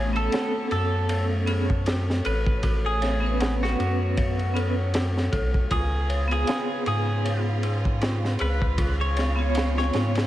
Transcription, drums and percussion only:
0.16 ride
0.32 snare, ride
0.71 ride
1.09 ride
1.47 ride
1.70 kick
1.86 snare, ride
2.10 snare
2.25 ride
2.46 kick
2.63 kick, ride
3.02 snare, ride
3.40 snare, ride
3.63 snare
3.80 ride
4.17 kick, ride
4.39 ride
4.56 ride
4.94 snare, ride
5.17 snare
5.33 kick, ride
5.54 kick
5.71 kick, ride
6.10 ride
6.31 ride
6.47 snare, ride
6.86 ride
7.25 ride
7.63 ride
7.85 kick
8.01 snare, ride
8.25 snare
8.39 ride
8.62 kick
8.78 kick, ride
9.17 snare, ride
9.55 snare, ride
9.78 snare
9.93 snare, ride
10.15 snare, ride

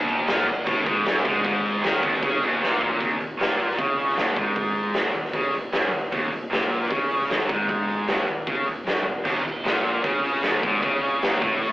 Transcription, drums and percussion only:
0.09 crash
0.28 snare, crash
0.48 crash
0.66 kick, crash
0.86 kick, crash
1.06 snare, crash
1.25 kick, crash
1.45 kick, crash
1.65 crash
1.84 snare, crash
2.03 kick, crash
2.13 snare
2.23 kick, crash
2.43 crash
2.63 snare
2.81 floor tom
3.00 kick, open hi-hat
3.20 open hi-hat
3.40 snare, open hi-hat
3.60 open hi-hat
3.71 snare
3.79 kick, open hi-hat
3.99 open hi-hat
4.09 snare
4.17 snare, open hi-hat
4.36 kick, open hi-hat
4.56 kick, open hi-hat
4.75 open hi-hat
4.94 snare, open hi-hat
5.15 open hi-hat
5.25 snare
5.33 kick, open hi-hat
5.53 open hi-hat
5.72 snare, open hi-hat
5.93 open hi-hat
6.12 kick, open hi-hat
6.33 open hi-hat
6.52 snare, open hi-hat
6.72 open hi-hat
6.83 snare
6.91 kick, open hi-hat
7.10 open hi-hat
7.22 snare
7.30 snare, open hi-hat
7.49 kick, open hi-hat
7.69 kick, open hi-hat
7.88 open hi-hat
8.08 snare, open hi-hat
8.28 open hi-hat
8.47 kick, open hi-hat
8.67 open hi-hat
8.87 snare, open hi-hat
9.05 high tom
9.25 kick, open hi-hat, crash
9.45 open hi-hat
9.65 snare, open hi-hat
9.84 open hi-hat
10.04 kick, open hi-hat
10.25 open hi-hat
10.35 snare
10.43 snare, open hi-hat
10.63 kick, open hi-hat
10.83 kick, open hi-hat
11.02 open hi-hat
11.22 snare, open hi-hat
11.42 kick, open hi-hat
11.62 open hi-hat

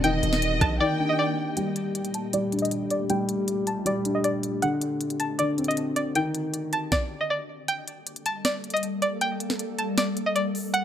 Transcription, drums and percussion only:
0.04 closed hi-hat
0.23 closed hi-hat
0.33 snare
0.42 closed hi-hat
0.61 kick, cross-stick, closed hi-hat
1.57 closed hi-hat
1.76 closed hi-hat
1.95 closed hi-hat
2.05 closed hi-hat
2.14 closed hi-hat
2.33 closed hi-hat
2.52 closed hi-hat
2.59 closed hi-hat
2.65 closed hi-hat
2.71 closed hi-hat
2.90 closed hi-hat
3.10 closed hi-hat
3.29 closed hi-hat
3.48 closed hi-hat
3.67 closed hi-hat
3.86 closed hi-hat
4.05 closed hi-hat
4.24 closed hi-hat
4.43 closed hi-hat
4.62 closed hi-hat
4.82 closed hi-hat
5.01 closed hi-hat
5.10 closed hi-hat
5.20 closed hi-hat
5.39 closed hi-hat
5.58 closed hi-hat
5.64 closed hi-hat
5.71 closed hi-hat
5.77 closed hi-hat
5.96 closed hi-hat
6.15 closed hi-hat
6.35 closed hi-hat
6.54 closed hi-hat
6.73 closed hi-hat
6.92 kick, snare
7.68 closed hi-hat
7.88 closed hi-hat
8.07 closed hi-hat
8.16 closed hi-hat
8.26 closed hi-hat
8.45 snare, closed hi-hat
8.64 closed hi-hat
8.70 closed hi-hat
8.77 closed hi-hat
8.83 closed hi-hat
9.02 closed hi-hat
9.21 closed hi-hat
9.40 closed hi-hat
9.50 snare
9.59 closed hi-hat
9.79 closed hi-hat
9.98 snare, closed hi-hat
10.17 closed hi-hat
10.36 closed hi-hat
10.55 open hi-hat
10.74 closed hi-hat

